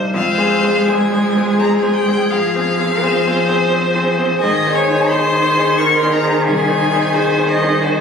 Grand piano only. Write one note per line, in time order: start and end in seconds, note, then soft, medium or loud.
0.00 0.11 C2 medium
0.00 0.14 G2 soft
0.00 0.17 G3 soft
0.00 0.17 D4 soft
0.00 0.17 D#4 medium
0.14 0.39 F2 medium
0.38 0.61 G#3 medium
0.38 0.61 G#4 medium
0.38 0.61 C5 medium
0.63 0.86 G#3 soft
0.63 0.86 G#4 medium
0.63 0.86 C5 medium
0.87 1.10 G#3 medium
0.87 1.11 G#4 medium
0.87 1.11 C5 medium
1.12 1.34 G#3 soft
1.12 1.35 G#4 soft
1.12 1.35 C5 medium
1.36 1.57 G#3 medium
1.36 1.57 G#4 medium
1.36 1.58 C5 medium
1.59 1.81 G#3 medium
1.59 1.81 G#4 medium
1.59 1.81 C5 medium
1.83 2.05 G#3 medium
1.83 2.05 G#4 medium
1.83 2.05 C5 medium
2.08 2.30 G#3 medium
2.08 2.30 G#4 soft
2.08 2.30 C5 medium
2.32 2.55 G#2 medium
2.55 2.77 C4 medium
2.55 2.77 G#4 soft
2.55 2.77 C5 medium
2.79 3.01 C4 medium
2.79 3.01 G#4 soft
2.79 3.01 C5 medium
3.02 3.24 C4 medium
3.02 3.24 G#4 medium
3.02 3.25 C5 medium
3.27 3.47 C4 soft
3.27 3.48 G#4 medium
3.27 3.48 C5 medium
3.48 3.70 C4 medium
3.48 3.70 G#4 medium
3.48 3.70 C5 medium
3.73 3.93 C4 medium
3.73 3.94 G#4 medium
3.73 3.94 C5 medium
3.95 4.16 C4 medium
3.95 4.17 G#4 medium
3.95 4.17 C5 medium
4.18 4.40 C4 medium
4.18 4.40 G#4 medium
4.18 4.40 C5 medium
4.43 4.65 G#2 medium
4.67 4.87 D#4 medium
4.67 4.87 G#4 medium
4.67 4.87 C5 medium
4.90 5.10 D#4 medium
4.90 5.10 G#4 medium
4.90 5.10 C5 medium
5.11 5.31 D#4 medium
5.11 5.32 G#4 medium
5.11 5.32 C5 medium
5.32 5.53 D#4 medium
5.32 5.53 G#4 soft
5.32 5.53 C5 medium
5.57 5.77 D#4 medium
5.57 5.77 G#4 medium
5.57 5.77 C5 medium
5.79 5.99 D#4 medium
5.79 6.00 G#4 medium
5.79 6.00 C5 medium
6.03 6.22 D#4 medium
6.03 6.23 G#4 medium
6.03 6.23 C5 medium
6.25 6.45 D#4 medium
6.25 6.45 G#4 medium
6.25 6.45 C5 medium
6.47 6.68 C2 medium
6.68 6.89 D#4 medium
6.68 6.89 G#4 medium
6.68 6.89 C5 medium
6.93 7.13 D#4 medium
6.93 7.12 G#4 medium
6.93 7.13 C5 medium
7.14 7.35 D#4 medium
7.14 7.35 G#4 medium
7.14 7.36 C5 medium
7.38 7.58 D#4 medium
7.38 7.59 G#4 medium
7.38 7.59 C5 medium
7.61 7.80 D#4 medium
7.61 7.80 G#4 medium
7.61 7.81 C5 medium
7.81 8.01 D#4 medium
7.81 8.01 G#4 medium
7.81 8.01 C5 medium